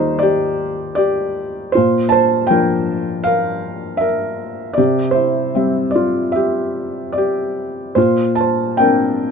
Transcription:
0, 0, Header, 1, 2, 480
1, 0, Start_track
1, 0, Tempo, 762389
1, 1102, Time_signature, 4, 2, 24, 8
1, 3497, Tempo, 805369
1, 5738, End_track
2, 0, Start_track
2, 0, Title_t, "Felt piano"
2, 0, Program_c, 0, 0
2, 0, Control_c, 0, 64, 127
2, 0, Note_on_c, 0, 39, 47
2, 0, Note_on_c, 0, 51, 37
2, 0, Note_on_c, 0, 55, 34
2, 0, Note_on_c, 0, 58, 37
2, 0, Note_on_c, 0, 63, 48
2, 0, Note_on_c, 0, 65, 52
2, 0, Note_on_c, 0, 67, 46
2, 0, Note_on_c, 0, 72, 59
2, 0, Note_on_c, 0, 74, 60
2, 0, Note_on_c, 0, 75, 60
2, 115, Note_off_c, 0, 72, 0
2, 118, Note_off_c, 0, 74, 0
2, 118, Note_on_c, 0, 74, 68
2, 124, Note_off_c, 0, 63, 0
2, 142, Note_off_c, 0, 67, 0
2, 142, Note_on_c, 0, 67, 54
2, 590, Note_off_c, 0, 74, 0
2, 599, Note_on_c, 0, 74, 65
2, 601, Note_off_c, 0, 67, 0
2, 615, Note_on_c, 0, 67, 54
2, 1072, Note_off_c, 0, 67, 0
2, 1077, Note_off_c, 0, 55, 0
2, 1078, Note_off_c, 0, 51, 0
2, 1082, Note_off_c, 0, 39, 0
2, 1082, Note_off_c, 0, 58, 0
2, 1084, Note_on_c, 0, 72, 58
2, 1102, Note_off_c, 0, 65, 0
2, 1102, Note_on_c, 0, 65, 43
2, 1104, Note_off_c, 0, 74, 0
2, 1110, Control_c, 0, 64, 0
2, 1112, Note_on_c, 0, 46, 50
2, 1114, Note_off_c, 0, 75, 0
2, 1234, Control_c, 0, 64, 127
2, 1315, Note_on_c, 0, 81, 74
2, 1322, Note_off_c, 0, 65, 0
2, 1327, Note_off_c, 0, 72, 0
2, 1336, Note_on_c, 0, 72, 57
2, 1546, Note_off_c, 0, 81, 0
2, 1554, Note_on_c, 0, 79, 74
2, 1557, Note_off_c, 0, 72, 0
2, 1576, Note_on_c, 0, 58, 35
2, 1576, Note_on_c, 0, 62, 43
2, 1577, Note_on_c, 0, 53, 39
2, 1578, Note_on_c, 0, 70, 52
2, 2015, Note_off_c, 0, 79, 0
2, 2027, Note_off_c, 0, 70, 0
2, 2037, Note_on_c, 0, 77, 74
2, 2056, Note_on_c, 0, 70, 54
2, 2501, Note_on_c, 0, 76, 71
2, 2508, Note_off_c, 0, 70, 0
2, 2525, Note_on_c, 0, 70, 51
2, 2538, Note_off_c, 0, 77, 0
2, 2981, Note_off_c, 0, 70, 0
2, 2981, Note_on_c, 0, 74, 58
2, 2985, Note_off_c, 0, 53, 0
2, 2985, Note_off_c, 0, 58, 0
2, 2985, Note_off_c, 0, 62, 0
2, 2989, Note_off_c, 0, 46, 0
2, 3007, Note_on_c, 0, 48, 48
2, 3008, Note_on_c, 0, 67, 42
2, 3009, Note_off_c, 0, 76, 0
2, 3017, Control_c, 0, 64, 0
2, 3126, Control_c, 0, 64, 127
2, 3218, Note_on_c, 0, 72, 56
2, 3233, Note_off_c, 0, 67, 0
2, 3241, Note_on_c, 0, 64, 45
2, 3244, Note_off_c, 0, 74, 0
2, 3494, Note_on_c, 0, 55, 36
2, 3494, Note_on_c, 0, 60, 34
2, 3502, Note_on_c, 0, 76, 37
2, 3692, Note_off_c, 0, 72, 0
2, 3703, Note_off_c, 0, 64, 0
2, 3708, Note_on_c, 0, 74, 55
2, 3736, Note_on_c, 0, 65, 43
2, 3944, Note_off_c, 0, 76, 0
2, 3953, Note_off_c, 0, 65, 0
2, 3953, Note_on_c, 0, 76, 59
2, 3963, Note_off_c, 0, 74, 0
2, 3975, Note_on_c, 0, 67, 46
2, 4420, Note_off_c, 0, 76, 0
2, 4431, Note_off_c, 0, 67, 0
2, 4433, Note_on_c, 0, 74, 53
2, 4464, Note_on_c, 0, 67, 45
2, 4904, Note_off_c, 0, 74, 0
2, 4911, Note_off_c, 0, 48, 0
2, 4911, Note_off_c, 0, 55, 0
2, 4911, Note_off_c, 0, 60, 0
2, 4919, Note_off_c, 0, 67, 0
2, 4925, Note_on_c, 0, 72, 51
2, 4930, Note_on_c, 0, 46, 48
2, 4942, Note_on_c, 0, 65, 41
2, 4944, Control_c, 0, 64, 0
2, 5039, Control_c, 0, 64, 127
2, 5153, Note_off_c, 0, 72, 0
2, 5162, Note_off_c, 0, 65, 0
2, 5166, Note_on_c, 0, 81, 58
2, 5196, Note_on_c, 0, 72, 44
2, 5410, Note_off_c, 0, 72, 0
2, 5415, Note_on_c, 0, 79, 67
2, 5418, Note_off_c, 0, 81, 0
2, 5426, Note_on_c, 0, 58, 34
2, 5428, Note_on_c, 0, 62, 40
2, 5431, Note_on_c, 0, 60, 35
2, 5437, Note_on_c, 0, 70, 49
2, 5738, Note_off_c, 0, 46, 0
2, 5738, Note_off_c, 0, 58, 0
2, 5738, Note_off_c, 0, 60, 0
2, 5738, Note_off_c, 0, 62, 0
2, 5738, Note_off_c, 0, 70, 0
2, 5738, Note_off_c, 0, 79, 0
2, 5738, End_track
0, 0, End_of_file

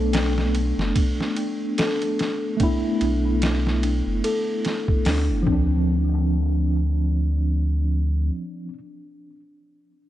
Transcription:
0, 0, Header, 1, 5, 480
1, 0, Start_track
1, 0, Tempo, 821918
1, 1515, Time_signature, 4, 2, 24, 8
1, 5894, End_track
2, 0, Start_track
2, 0, Title_t, "Celesta"
2, 0, Program_c, 0, 8
2, 0, Control_c, 0, 64, 127
2, 0, Note_on_c, 0, 69, 99
2, 76, Note_on_c, 0, 62, 94
2, 295, Note_off_c, 0, 62, 0
2, 317, Note_on_c, 0, 62, 70
2, 545, Note_off_c, 0, 62, 0
2, 798, Note_on_c, 0, 62, 67
2, 1026, Note_off_c, 0, 62, 0
2, 1041, Note_off_c, 0, 69, 0
2, 1041, Note_on_c, 0, 69, 89
2, 1268, Note_off_c, 0, 69, 0
2, 1522, Note_on_c, 0, 62, 93
2, 1738, Note_off_c, 0, 62, 0
2, 1759, Note_on_c, 0, 62, 63
2, 1987, Note_off_c, 0, 62, 0
2, 2237, Note_on_c, 0, 62, 66
2, 2466, Note_off_c, 0, 62, 0
2, 2477, Note_on_c, 0, 69, 94
2, 2706, Note_off_c, 0, 69, 0
2, 2955, Note_on_c, 0, 62, 81
2, 3174, Note_off_c, 0, 62, 0
2, 3191, Note_on_c, 0, 62, 76
2, 3202, Control_c, 0, 64, 0
2, 3290, Control_c, 0, 64, 127
2, 3442, Control_c, 0, 64, 0
2, 3539, Control_c, 0, 64, 127
2, 3650, Note_off_c, 0, 62, 0
2, 5894, End_track
3, 0, Start_track
3, 0, Title_t, "Tine electric piano"
3, 0, Program_c, 1, 4
3, 0, Note_on_c, 1, 57, 90
3, 0, Note_on_c, 1, 59, 80
3, 0, Note_on_c, 1, 62, 95
3, 1482, Note_off_c, 1, 57, 0
3, 1493, Note_off_c, 1, 59, 0
3, 1500, Note_on_c, 1, 57, 74
3, 1502, Note_off_c, 1, 62, 0
3, 1521, Note_on_c, 1, 59, 67
3, 1538, Note_on_c, 1, 64, 89
3, 3163, Note_off_c, 1, 57, 0
3, 3169, Note_on_c, 1, 53, 72
3, 3173, Note_off_c, 1, 59, 0
3, 3182, Note_off_c, 1, 64, 0
3, 3198, Note_on_c, 1, 60, 65
3, 3225, Note_on_c, 1, 62, 76
3, 5069, Note_off_c, 1, 53, 0
3, 5098, Note_off_c, 1, 60, 0
3, 5126, Note_off_c, 1, 62, 0
3, 5894, End_track
4, 0, Start_track
4, 0, Title_t, "Sub bass"
4, 0, Program_c, 2, 38
4, 0, Note_on_c, 2, 35, 84
4, 427, Note_off_c, 2, 35, 0
4, 456, Note_on_c, 2, 30, 83
4, 544, Note_off_c, 2, 30, 0
4, 1761, Note_on_c, 2, 35, 83
4, 2349, Note_off_c, 2, 35, 0
4, 2375, Note_on_c, 2, 30, 80
4, 2464, Note_off_c, 2, 30, 0
4, 2954, Note_on_c, 2, 38, 99
4, 3093, Note_on_c, 2, 30, 86
4, 3101, Note_off_c, 2, 38, 0
4, 3183, Note_off_c, 2, 30, 0
4, 3194, Note_on_c, 2, 38, 91
4, 4851, Note_off_c, 2, 38, 0
4, 5894, End_track
5, 0, Start_track
5, 0, Title_t, "Drums"
5, 78, Note_on_c, 9, 51, 82
5, 85, Note_on_c, 9, 38, 108
5, 136, Note_off_c, 9, 51, 0
5, 144, Note_off_c, 9, 38, 0
5, 221, Note_on_c, 9, 38, 47
5, 279, Note_off_c, 9, 38, 0
5, 319, Note_on_c, 9, 51, 60
5, 377, Note_off_c, 9, 51, 0
5, 463, Note_on_c, 9, 38, 41
5, 521, Note_off_c, 9, 38, 0
5, 558, Note_on_c, 9, 51, 82
5, 559, Note_on_c, 9, 36, 104
5, 617, Note_off_c, 9, 36, 0
5, 617, Note_off_c, 9, 51, 0
5, 704, Note_on_c, 9, 38, 39
5, 762, Note_off_c, 9, 38, 0
5, 797, Note_on_c, 9, 51, 59
5, 855, Note_off_c, 9, 51, 0
5, 1039, Note_on_c, 9, 51, 76
5, 1047, Note_on_c, 9, 38, 102
5, 1098, Note_off_c, 9, 51, 0
5, 1105, Note_off_c, 9, 38, 0
5, 1178, Note_on_c, 9, 51, 44
5, 1236, Note_off_c, 9, 51, 0
5, 1281, Note_on_c, 9, 51, 54
5, 1288, Note_on_c, 9, 38, 42
5, 1339, Note_off_c, 9, 51, 0
5, 1347, Note_off_c, 9, 38, 0
5, 1517, Note_on_c, 9, 51, 76
5, 1519, Note_on_c, 9, 36, 96
5, 1576, Note_off_c, 9, 51, 0
5, 1577, Note_off_c, 9, 36, 0
5, 1757, Note_on_c, 9, 51, 55
5, 1816, Note_off_c, 9, 51, 0
5, 1996, Note_on_c, 9, 51, 78
5, 2004, Note_on_c, 9, 38, 97
5, 2055, Note_off_c, 9, 51, 0
5, 2062, Note_off_c, 9, 38, 0
5, 2142, Note_on_c, 9, 38, 36
5, 2201, Note_off_c, 9, 38, 0
5, 2238, Note_on_c, 9, 51, 62
5, 2296, Note_off_c, 9, 51, 0
5, 2477, Note_on_c, 9, 51, 84
5, 2535, Note_off_c, 9, 51, 0
5, 2714, Note_on_c, 9, 51, 59
5, 2721, Note_on_c, 9, 38, 42
5, 2772, Note_off_c, 9, 51, 0
5, 2780, Note_off_c, 9, 38, 0
5, 2851, Note_on_c, 9, 36, 82
5, 2910, Note_off_c, 9, 36, 0
5, 2950, Note_on_c, 9, 46, 72
5, 2957, Note_on_c, 9, 38, 103
5, 3008, Note_off_c, 9, 46, 0
5, 3016, Note_off_c, 9, 38, 0
5, 3193, Note_on_c, 9, 36, 91
5, 3252, Note_off_c, 9, 36, 0
5, 5894, End_track
0, 0, End_of_file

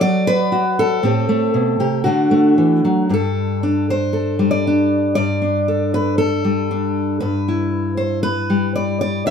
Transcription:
0, 0, Header, 1, 2, 480
1, 0, Start_track
1, 0, Key_signature, 1, "major"
1, 0, Tempo, 514139
1, 953, Time_signature, 4, 2, 24, 8
1, 8686, End_track
2, 0, Start_track
2, 0, Title_t, "Steel-string acoustic guitar"
2, 0, Program_c, 0, 25
2, 0, Note_on_c, 0, 66, 57
2, 0, Note_on_c, 0, 69, 47
2, 5, Note_on_c, 0, 54, 60
2, 10, Note_on_c, 0, 74, 104
2, 251, Note_off_c, 0, 69, 0
2, 255, Note_on_c, 0, 71, 107
2, 473, Note_off_c, 0, 66, 0
2, 486, Note_on_c, 0, 66, 61
2, 719, Note_off_c, 0, 74, 0
2, 739, Note_on_c, 0, 69, 92
2, 927, Note_off_c, 0, 54, 0
2, 929, Note_off_c, 0, 66, 0
2, 960, Note_on_c, 0, 45, 69
2, 961, Note_off_c, 0, 71, 0
2, 964, Note_on_c, 0, 57, 40
2, 971, Note_on_c, 0, 60, 41
2, 982, Note_on_c, 0, 67, 46
2, 1192, Note_off_c, 0, 57, 0
2, 1203, Note_on_c, 0, 57, 59
2, 1435, Note_off_c, 0, 45, 0
2, 1438, Note_on_c, 0, 47, 57
2, 1670, Note_off_c, 0, 67, 0
2, 1674, Note_off_c, 0, 47, 0
2, 1678, Note_on_c, 0, 48, 54
2, 1682, Note_on_c, 0, 67, 64
2, 1893, Note_off_c, 0, 57, 0
2, 1900, Note_off_c, 0, 67, 0
2, 1904, Note_on_c, 0, 66, 72
2, 1919, Note_off_c, 0, 48, 0
2, 1920, Note_on_c, 0, 50, 62
2, 1925, Note_off_c, 0, 60, 0
2, 1927, Note_on_c, 0, 57, 42
2, 1930, Note_off_c, 0, 69, 0
2, 1936, Note_on_c, 0, 62, 42
2, 2146, Note_off_c, 0, 57, 0
2, 2158, Note_on_c, 0, 57, 63
2, 2403, Note_off_c, 0, 50, 0
2, 2407, Note_on_c, 0, 52, 53
2, 2652, Note_off_c, 0, 52, 0
2, 2657, Note_on_c, 0, 54, 59
2, 2865, Note_off_c, 0, 57, 0
2, 2876, Note_off_c, 0, 62, 0
2, 2889, Note_off_c, 0, 66, 0
2, 2889, Note_on_c, 0, 43, 53
2, 2897, Note_on_c, 0, 55, 35
2, 2898, Note_off_c, 0, 54, 0
2, 2899, Note_on_c, 0, 62, 36
2, 2928, Note_on_c, 0, 69, 70
2, 3386, Note_off_c, 0, 62, 0
2, 3390, Note_on_c, 0, 62, 45
2, 3637, Note_off_c, 0, 69, 0
2, 3644, Note_on_c, 0, 72, 79
2, 3855, Note_on_c, 0, 69, 38
2, 4096, Note_off_c, 0, 55, 0
2, 4099, Note_on_c, 0, 55, 62
2, 4205, Note_off_c, 0, 72, 0
2, 4208, Note_on_c, 0, 74, 84
2, 4346, Note_off_c, 0, 62, 0
2, 4363, Note_on_c, 0, 62, 43
2, 4787, Note_off_c, 0, 69, 0
2, 4799, Note_off_c, 0, 74, 0
2, 4801, Note_off_c, 0, 62, 0
2, 4810, Note_on_c, 0, 74, 93
2, 4820, Note_off_c, 0, 43, 0
2, 4824, Note_on_c, 0, 43, 61
2, 5057, Note_on_c, 0, 62, 40
2, 5304, Note_on_c, 0, 69, 46
2, 5532, Note_off_c, 0, 74, 0
2, 5546, Note_on_c, 0, 71, 80
2, 5758, Note_off_c, 0, 69, 0
2, 5766, Note_off_c, 0, 71, 0
2, 5769, Note_on_c, 0, 69, 82
2, 6013, Note_off_c, 0, 55, 0
2, 6017, Note_on_c, 0, 55, 56
2, 6250, Note_off_c, 0, 62, 0
2, 6263, Note_on_c, 0, 62, 44
2, 6707, Note_off_c, 0, 62, 0
2, 6723, Note_off_c, 0, 69, 0
2, 6726, Note_on_c, 0, 71, 76
2, 6735, Note_off_c, 0, 43, 0
2, 6739, Note_on_c, 0, 43, 62
2, 6987, Note_on_c, 0, 64, 41
2, 7441, Note_off_c, 0, 71, 0
2, 7444, Note_on_c, 0, 72, 67
2, 7679, Note_off_c, 0, 72, 0
2, 7682, Note_on_c, 0, 71, 84
2, 7930, Note_off_c, 0, 55, 0
2, 7934, Note_on_c, 0, 55, 60
2, 8162, Note_off_c, 0, 71, 0
2, 8174, Note_on_c, 0, 74, 80
2, 8400, Note_off_c, 0, 74, 0
2, 8411, Note_on_c, 0, 74, 84
2, 8640, Note_off_c, 0, 43, 0
2, 8643, Note_on_c, 0, 43, 56
2, 8645, Note_off_c, 0, 74, 0
2, 8652, Note_on_c, 0, 76, 108
2, 8686, Note_off_c, 0, 43, 0
2, 8686, Note_off_c, 0, 55, 0
2, 8686, Note_off_c, 0, 64, 0
2, 8686, Note_off_c, 0, 76, 0
2, 8686, End_track
0, 0, End_of_file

